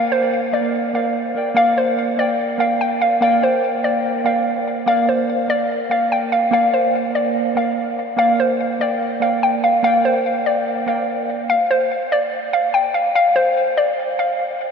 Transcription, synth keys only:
0.00 0.20 A#3 medium
0.00 0.22 A#4 medium
0.00 0.23 D5 medium
0.00 0.24 F5 loud
0.20 0.43 A#3 medium
0.20 0.44 A#4 medium
0.20 0.44 D5 medium
0.20 0.45 F5 medium
0.52 0.60 A#3 medium
0.52 0.60 A#4 medium
0.52 0.61 D5 medium
0.52 0.62 F5 medium
0.61 0.84 A#3 medium
0.61 0.84 A#4 medium
0.61 0.85 D5 medium
0.61 0.85 F5 medium
0.93 1.23 A#3 medium
0.93 1.23 A#4 medium
0.93 1.24 D5 medium
0.93 1.24 F5 medium
1.35 1.50 A#3 medium
1.35 1.50 A#4 medium
1.35 1.51 D5 medium
1.35 1.51 G5 medium
1.54 1.99 A#3 loud
1.54 1.99 A#4 medium
1.54 2.00 D5 medium
1.54 2.00 F5 loud
2.17 2.47 A#3 medium
2.17 2.47 A#4 medium
2.17 2.48 D5 medium
2.17 2.48 G5 medium
2.58 3.02 A#3 medium
2.58 3.03 A#4 medium
2.58 3.03 D5 medium
2.58 3.04 G5 medium
3.21 3.79 A#3 loud
3.21 3.80 A#4 medium
3.21 3.80 D5 loud
3.21 3.81 G5 loud
4.24 4.68 A#3 medium
4.24 4.69 A#4 medium
4.24 4.69 D5 medium
4.24 4.70 G5 medium
4.86 5.30 A#3 loud
4.86 5.31 A#4 medium
4.86 5.31 D5 medium
4.86 5.32 F5 loud
5.48 5.78 A#3 medium
5.48 5.78 A#4 medium
5.48 5.79 D5 medium
5.48 5.79 F5 medium
5.89 6.34 A#3 medium
5.89 6.34 A#4 medium
5.89 6.35 D5 medium
5.89 6.35 F5 medium
6.51 7.10 A#3 loud
6.51 7.10 A#4 medium
6.51 7.11 D5 medium
6.51 7.11 F5 loud
7.55 7.99 A#3 medium
7.55 8.00 A#4 medium
7.55 8.00 D5 medium
7.55 8.01 F5 medium
8.16 8.61 A#3 loud
8.16 8.61 A#4 medium
8.16 8.62 D5 loud
8.16 8.62 F5 loud
8.79 9.09 A#3 medium
8.79 9.09 A#4 medium
8.79 9.10 D5 medium
8.79 9.11 G5 medium
9.20 9.64 A#3 medium
9.20 9.65 A#4 medium
9.20 9.65 D5 medium
9.20 9.66 G5 medium
9.83 10.41 A#3 loud
9.83 10.42 A#4 medium
9.83 10.42 D5 medium
9.83 10.43 G5 loud
10.86 11.30 A#3 medium
10.86 11.31 A#4 medium
10.86 11.31 D5 medium
10.86 11.32 G5 medium

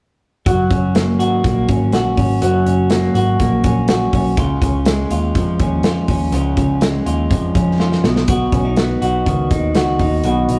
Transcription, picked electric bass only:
0.46 0.67 F#1 medium
0.71 1.20 F#1 loud
1.20 1.41 G#1 medium
1.45 1.65 A#1 medium
1.69 1.93 G#1 medium
1.93 2.14 A#1 medium
2.18 2.38 G#1 medium
2.42 2.63 F#1 medium
2.66 3.08 F#1 loud
3.15 3.36 G#1 medium
3.40 3.61 A#1 medium
3.64 4.06 A#1 medium
4.13 4.34 B1 medium
4.38 4.58 C#2 medium
4.62 5.03 C#2 medium
5.10 5.31 D#2 medium
5.36 5.56 F2 medium
5.60 5.84 D#2 medium
5.84 6.05 F2 medium
6.08 6.29 D#2 medium
6.32 6.53 C#2 loud
6.57 6.99 C#2 loud
7.06 7.27 D#2 medium
7.31 7.51 F2 medium
7.55 7.97 F2 medium
8.04 8.45 B1 medium
8.53 8.94 B1 loud
9.02 9.22 B1 medium
9.27 9.47 C#2 medium
9.51 9.76 D#2 medium
9.76 9.96 C#2 medium
10.00 10.20 D#2 medium
10.24 10.45 B1 loud
10.49 10.59 B1 medium

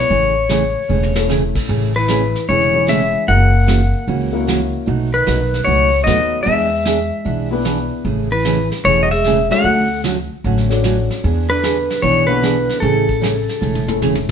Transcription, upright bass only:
0.10 0.74 A1 medium
0.90 1.53 E1 medium
1.69 2.33 A1 medium
2.49 3.12 E1 medium
3.28 3.92 F#1 medium
4.08 4.71 C#2 medium
4.88 5.19 B1 medium
5.28 5.61 B1 medium
5.67 6.01 C#2 medium
6.07 6.40 D#2 medium
6.46 7.10 E2 medium
7.26 7.89 B1 medium
8.05 8.68 A1 medium
8.85 9.48 E1 medium
9.64 10.28 D2 medium
10.44 11.08 A1 medium
11.24 11.87 E2 medium
12.03 12.67 B1 medium
12.82 13.46 A1 loud
13.62 14.25 E1 medium

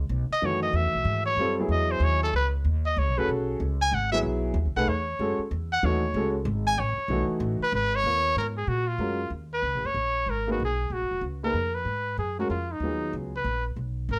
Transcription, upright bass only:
0.09 0.29 B1 loud
0.31 muted upright bass stroke soft
0.42 0.73 F#2 medium
0.73 0.86 E2 loud
0.84 0.94 C#2 medium
0.95 1.04 B1 medium
1.05 1.36 G#2 medium
1.36 1.68 F#2 medium
1.69 1.99 E2 medium
2.00 2.32 D#2 loud
2.33 2.64 C#2 medium
2.65 2.96 D#2 loud
2.96 3.08 C#2 loud
3.08 3.18 B1 medium
3.19 3.28 F#1 medium
3.29 3.59 B1 medium
3.60 3.91 C#2 loud
3.92 4.22 G#1 medium
4.23 4.53 B1 medium
4.54 4.67 D#2 loud
4.65 4.76 C#2 medium
4.76 4.86 B1 medium
4.87 5.18 E2 medium
5.19 5.38 F#2 medium
5.39 muted upright bass stroke soft
5.51 5.82 E2 loud
5.83 6.14 D#2 loud
6.14 6.45 C#2 loud
6.45 6.76 G#1 loud
6.77 6.96 A1 loud
6.97 muted upright bass stroke soft
7.08 7.28 B1 medium
7.28 muted upright bass stroke soft
7.40 7.59 A1 loud
7.60 muted upright bass stroke soft
7.72 8.03 G#1 loud
8.04 8.35 D#2 medium
8.36 8.67 G#2 medium
8.67 8.98 A#2 medium
8.98 9.30 F#2 medium
9.30 9.62 D#2 medium
9.62 9.75 C#2 medium
9.75 9.84 A#1 medium
9.84 9.94 F#1 medium
9.94 10.26 A#1 medium
10.26 10.58 G#1 medium
10.60 10.89 B1 medium
10.90 11.03 A#1 medium
11.01 11.11 F#1 soft
11.11 11.21 D#1 medium
11.21 11.53 C#2 medium
11.53 11.85 F2 medium
11.85 12.17 G#2 medium
12.17 12.49 F#2 medium
12.50 12.79 F2 medium
12.80 13.12 D#2 medium
13.13 13.44 C#2 medium
13.44 13.76 A#1 medium
13.76 14.08 B1 medium
14.09 14.19 G#1 medium

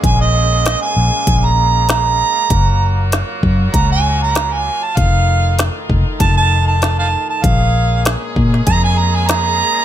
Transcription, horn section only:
0.00 2.47 G#3 medium
0.00 4.94 A#3 medium
0.00 2.47 C#4 medium
0.00 2.47 G#4 medium
2.50 4.95 F#3 medium
2.50 7.40 F4 medium
2.50 4.95 F#4 medium
4.98 7.42 D#3 medium
4.98 7.42 A3 medium
4.98 7.42 D#4 medium
7.44 9.85 G#3 medium
7.44 9.85 A#3 medium
7.44 9.85 C#4 medium
7.44 9.85 G#4 medium

